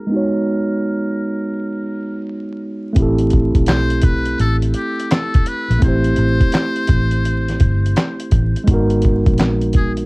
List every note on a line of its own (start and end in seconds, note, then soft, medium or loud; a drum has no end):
0.00 0.13 G#4 medium
0.00 2.26 A#4 medium
0.07 2.90 G#3 medium
0.07 2.92 B3 medium
0.12 2.93 D#4 medium
0.12 2.94 F#4 medium
0.16 2.95 C#5 medium
2.93 3.52 A1 loud
2.93 5.76 A3 medium
2.93 5.78 C4 medium
2.93 kick loud
2.93 closed hi-hat medium
2.98 5.79 E4 medium
2.98 5.80 G4 medium
3.02 5.81 A4 medium
3.19 closed hi-hat soft
3.30 kick medium
3.30 closed hi-hat medium
3.55 4.35 B1 medium
3.55 kick medium
3.55 closed hi-hat soft
3.66 4.06 C5 loud
3.66 snare loud
3.66 clap medium
3.66 closed hi-hat medium
3.90 closed hi-hat soft
4.01 4.40 B4 loud
4.01 kick medium
4.01 closed hi-hat medium
4.25 closed hi-hat soft
4.39 4.72 A1 medium
4.39 4.57 A4 loud
4.39 closed hi-hat medium
4.62 closed hi-hat soft
4.74 5.14 G4 medium
4.74 closed hi-hat medium
5.00 closed hi-hat medium
5.11 5.49 A4 loud
5.11 snare loud
5.11 clap medium
5.11 closed hi-hat medium
5.34 kick loud
5.34 closed hi-hat medium
5.46 5.83 B4 loud
5.46 closed hi-hat medium
5.70 5.81 A#1 medium
5.70 closed hi-hat soft
5.79 6.15 A1 loud
5.79 8.62 A3 medium
5.79 8.63 C4 medium
5.79 kick loud
5.79 closed hi-hat medium
5.83 8.65 E4 medium
5.83 8.66 G4 medium
5.83 8.29 C5 loud
5.88 8.67 C5 medium
6.04 closed hi-hat soft
6.16 6.40 A1 medium
6.16 closed hi-hat medium
6.41 kick loud
6.41 closed hi-hat soft
6.52 snare loud
6.52 clap medium
6.52 closed hi-hat medium
6.76 closed hi-hat soft
6.87 7.57 A1 medium
6.87 kick medium
6.87 closed hi-hat medium
7.11 closed hi-hat medium
7.25 closed hi-hat medium
7.48 snare soft
7.48 closed hi-hat soft
7.60 7.94 G1 medium
7.60 kick loud
7.60 closed hi-hat medium
7.86 closed hi-hat medium
7.96 snare loud
7.96 clap medium
7.96 closed hi-hat medium
8.20 closed hi-hat medium
8.31 8.54 A1 loud
8.31 kick medium
8.31 closed hi-hat medium
8.56 closed hi-hat soft
8.64 9.23 G#1 loud
8.64 10.06 G#3 medium
8.64 10.06 B3 medium
8.64 kick loud
8.64 closed hi-hat medium
8.69 10.06 D#4 medium
8.69 10.06 F#4 medium
8.74 10.06 A#4 medium
8.90 closed hi-hat soft
9.02 kick medium
9.02 closed hi-hat medium
9.26 10.06 A#1 medium
9.26 kick loud
9.26 closed hi-hat soft
9.38 snare loud
9.38 clap medium
9.38 closed hi-hat medium
9.61 closed hi-hat soft
9.73 9.92 G#4 medium
9.73 kick medium
9.73 closed hi-hat medium
9.97 closed hi-hat soft